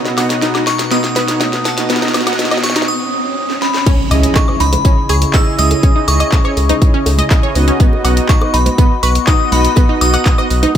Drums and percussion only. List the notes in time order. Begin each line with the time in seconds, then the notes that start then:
0.05 snare
0.18 snare, open hi-hat, high woodblock
0.30 snare, closed hi-hat
0.42 snare, closed hi-hat
0.55 snare, high woodblock
0.67 snare, open hi-hat
0.79 snare, closed hi-hat
0.91 snare, closed hi-hat
1.04 snare
1.16 snare, open hi-hat
1.28 snare, closed hi-hat
1.41 snare, closed hi-hat
1.53 snare
1.65 snare, open hi-hat
1.78 snare, closed hi-hat
1.90 snare, closed hi-hat
1.96 snare
2.02 snare
2.08 snare
2.14 snare, open hi-hat, high woodblock
2.21 snare
2.27 snare, closed hi-hat, high woodblock
2.33 snare
2.39 snare, closed hi-hat
2.45 snare
2.51 snare, high woodblock
2.57 snare
2.63 snare, open hi-hat
2.70 snare
2.76 snare, closed hi-hat
2.82 snare
3.50 snare
3.62 snare
3.74 snare
3.86 kick, closed hi-hat, tambourine, crash, high bongo
4.11 open hi-hat, tambourine, high woodblock
4.23 closed hi-hat
4.35 kick, snare, clap, closed hi-hat, tambourine, high bongo
4.48 cowbell, high woodblock
4.60 open hi-hat, tambourine
4.73 closed hi-hat, cowbell, high bongo, high conga
4.85 kick, closed hi-hat, tambourine
5.09 open hi-hat, tambourine
5.22 snare, closed hi-hat, high bongo
5.34 kick, snare, clap, closed hi-hat, tambourine
5.59 open hi-hat, high conga
5.71 closed hi-hat, high bongo
5.83 kick, closed hi-hat, tambourine
6.08 open hi-hat, tambourine, high bongo, high woodblock
6.20 closed hi-hat, high woodblock
6.32 kick, snare, clap, closed hi-hat, tambourine
6.44 cowbell, high woodblock
6.57 open hi-hat, tambourine, high bongo
6.69 closed hi-hat, cowbell, high conga
6.82 kick, closed hi-hat, tambourine
7.06 open hi-hat, tambourine, high bongo
7.18 closed hi-hat, high conga
7.31 kick, snare, clap, closed hi-hat, tambourine
7.43 high bongo
7.55 open hi-hat, tambourine, cowbell
7.68 closed hi-hat
7.80 kick, closed hi-hat, tambourine
7.93 high bongo
8.05 open hi-hat, tambourine, high woodblock
8.17 closed hi-hat
8.29 kick, snare, clap, closed hi-hat, tambourine
8.41 cowbell, high bongo, high woodblock
8.54 open hi-hat, tambourine
8.66 closed hi-hat, cowbell, high conga
8.78 kick, closed hi-hat, tambourine, high bongo
9.03 open hi-hat, tambourine
9.15 snare, closed hi-hat
9.27 kick, snare, clap, closed hi-hat, tambourine, high bongo
9.52 open hi-hat, high conga
9.65 closed hi-hat
9.76 kick, closed hi-hat, tambourine, high bongo
10.01 open hi-hat, tambourine, high woodblock
10.13 closed hi-hat, high bongo, high woodblock
10.26 kick, snare, clap, closed hi-hat, tambourine
10.38 cowbell, high woodblock
10.50 open hi-hat, tambourine
10.63 closed hi-hat, cowbell, high bongo, high conga